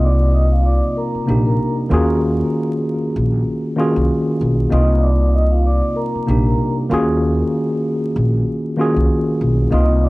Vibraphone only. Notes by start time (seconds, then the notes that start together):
0.03 D5 D6
0.34 D#5 D#6
0.52 F4 F5
0.65 D5 D6
0.97 A#4 A#5
1.46 A#4 A#5
4.71 D#5 D#6
5.02 D5 D6
5.34 D#5 D#6
5.51 F4 F5
5.66 D5 D6
5.96 A#4 A#5
6.46 A#4 A#5
9.72 D#5 D#6
10.03 D5 D6